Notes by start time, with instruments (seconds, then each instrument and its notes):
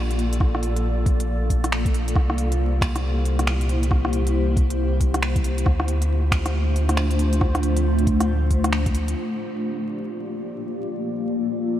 Already playing: sub bass A#1, ambient pad A#3 F4 A4 D5
0.11 closed hi-hat
0.19 open hi-hat
0.33 closed hi-hat
0.40 kick, cross-stick
0.55 cross-stick
0.63 open hi-hat
0.76 closed hi-hat
1.06 kick, open hi-hat
1.20 closed hi-hat
1.50 kick, open hi-hat
1.64 cross-stick, closed hi-hat
1.72 finger snap
1.85 kick, closed hi-hat
1.94 open hi-hat
2.08 closed hi-hat
2.15 sub bass C2, ambient pad E4 G4 C5, kick, cross-stick
2.30 cross-stick
2.38 open hi-hat
2.52 closed hi-hat
2.81 finger snap, kick, open hi-hat
2.96 cross-stick, closed hi-hat
3.25 open hi-hat
3.39 cross-stick, closed hi-hat
3.47 finger snap
3.61 closed hi-hat
3.69 open hi-hat
3.83 closed hi-hat
3.91 kick, cross-stick
4.05 cross-stick
4.13 open hi-hat
4.27 closed hi-hat
4.57 kick, open hi-hat
4.70 closed hi-hat
5.00 kick, open hi-hat
5.14 cross-stick, closed hi-hat
5.22 finger snap
5.36 kick, closed hi-hat
5.44 open hi-hat
5.58 closed hi-hat
5.66 sub bass D2, ambient pad A3 D4 F4 C5, kick, cross-stick
5.80 cross-stick
5.88 open hi-hat
6.02 closed hi-hat
6.32 finger snap, kick, open hi-hat
6.46 cross-stick, closed hi-hat
6.76 open hi-hat
6.89 cross-stick, closed hi-hat
6.97 finger snap
7.11 closed hi-hat
7.19 open hi-hat
7.33 closed hi-hat
7.41 kick, cross-stick
7.55 cross-stick, closed hi-hat
7.63 open hi-hat
7.77 closed hi-hat
7.99 closed hi-hat
8.07 kick, open hi-hat
8.20 cross-stick, closed hi-hat
8.51 kick, open hi-hat
8.64 cross-stick, closed hi-hat
8.72 finger snap
8.86 kick, closed hi-hat
8.95 open hi-hat
9.08 closed hi-hat
9.17 ambient pad A#3 F4 G4 D5
10.92 ambient pad A4